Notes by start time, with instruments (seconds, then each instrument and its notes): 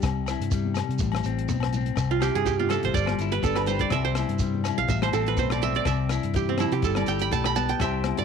Already playing: clean electric guitar G3 G4, qanun C4 E4 G4 A4
0.02 fingered electric bass C2, clean electric guitar C3, kick, cross-stick, closed hi-hat, low agogo, shekere
0.26 clean electric guitar E4, cross-stick, closed hi-hat, low agogo, shekere
0.40 fingered electric bass G2, closed hi-hat
0.51 clean electric guitar G3, kick, closed hi-hat, shekere
0.65 high conga
0.74 cross-stick, closed hi-hat, low conga, low agogo, shekere
0.89 fingered electric bass C3, closed hi-hat
0.99 fingered electric bass A1, clean electric guitar A2, kick, closed hi-hat, shekere
1.12 cross-stick, high conga, low conga, low agogo
1.24 fingered electric bass A1, clean electric guitar C4, closed hi-hat, shekere
1.39 closed hi-hat
1.48 fingered electric bass B1, muted clean electric guitar stroke, kick, closed hi-hat, high conga, shekere
1.60 cross-stick, low agogo
1.73 clean electric guitar C4, closed hi-hat, low conga, shekere
1.86 closed hi-hat
1.96 fingered electric bass C2, clean electric guitar C3, kick, cross-stick, closed hi-hat, low agogo, shekere
2.11 qanun F4
2.21 clean electric guitar E4, qanun G4, cross-stick, closed hi-hat, high conga, low agogo, shekere
2.35 fingered electric bass G2, qanun G#4, closed hi-hat
2.46 clean electric guitar G3, qanun G4, kick, closed hi-hat, shekere
2.59 qanun F4, high conga
2.69 clean electric guitar E4, qanun A4, cross-stick, closed hi-hat, low conga, low agogo, shekere
2.83 fingered electric bass G#1, qanun C5, closed hi-hat
2.93 fingered electric bass G1, clean electric guitar G3, qanun D5, kick, closed hi-hat, high conga, shekere
3.06 cross-stick, high conga, low conga, low agogo
3.18 fingered electric bass G1, clean electric guitar E4, closed hi-hat, shekere
3.32 clean electric guitar G4, qanun B4, closed hi-hat, high conga
3.43 fingered electric bass G1, clean electric guitar D4, qanun A4, kick, closed hi-hat, high conga, shekere
3.55 qanun B4, cross-stick, high conga, low agogo
3.66 qanun C5, closed hi-hat, low conga, shekere
3.71 clean electric guitar G4
3.79 qanun D5, kick, closed hi-hat, low conga
3.90 fingered electric bass C2, clean electric guitar C3, qanun E5, kick, cross-stick, closed hi-hat, low agogo, shekere
4.05 qanun C5
4.15 clean electric guitar E4, cross-stick, closed hi-hat, high conga, low agogo, shekere
4.29 fingered electric bass G2, closed hi-hat
4.39 clean electric guitar G3, kick, closed hi-hat, shekere
4.54 high conga
4.64 cross-stick, closed hi-hat, low conga, low agogo, shekere
4.68 clean electric guitar E4
4.78 fingered electric bass B1, qanun F5, closed hi-hat
4.88 fingered electric bass A1, clean electric guitar A2, qanun E5, kick, closed hi-hat, shekere
5.02 qanun C5, cross-stick, high conga, low conga, low agogo
5.13 fingered electric bass A1, clean electric guitar C4, qanun A4, closed hi-hat, shekere
5.26 qanun B4, closed hi-hat
5.37 fingered electric bass B1, clean electric guitar A3, qanun C5, kick, closed hi-hat, high conga, shekere
5.50 qanun D5, cross-stick, low agogo
5.62 clean electric guitar C4, qanun E5, closed hi-hat, low conga, shekere
5.75 qanun D5, closed hi-hat
5.85 fingered electric bass C2, clean electric guitar C3, qanun E5, kick, cross-stick, closed hi-hat, low agogo, shekere
6.09 clean electric guitar E4, cross-stick, closed hi-hat, high conga, low agogo, shekere
6.23 fingered electric bass G2, closed hi-hat
6.34 clean electric guitar E3, qanun G4, kick, closed hi-hat, shekere
6.49 qanun C4, high conga
6.58 clean electric guitar F3, qanun E4, cross-stick, closed hi-hat, low conga, low agogo, shekere
6.72 fingered electric bass C3, qanun G4, closed hi-hat
6.82 fingered electric bass G1, clean electric guitar G3, qanun A4, kick, closed hi-hat, shekere
6.95 qanun D5, cross-stick, high conga, low conga, low agogo
7.06 fingered electric bass G1, clean electric guitar G4, qanun G5, closed hi-hat, shekere
7.19 qanun B5, closed hi-hat
7.31 fingered electric bass B1, clean electric guitar A3, qanun A5, kick, closed hi-hat, high conga, shekere
7.44 qanun B5, cross-stick, low agogo
7.55 clean electric guitar B3, qanun A5, closed hi-hat, low conga, shekere
7.69 qanun G5, closed hi-hat
7.80 fingered electric bass C2, clean electric guitar C3 G3 E4 G4, qanun E5, kick, cross-stick, closed hi-hat, low agogo, shekere
7.84 clean electric guitar C5
8.04 clean electric guitar E4, cross-stick, closed hi-hat, high conga, low agogo
8.17 fingered electric bass G2, qanun D5, closed hi-hat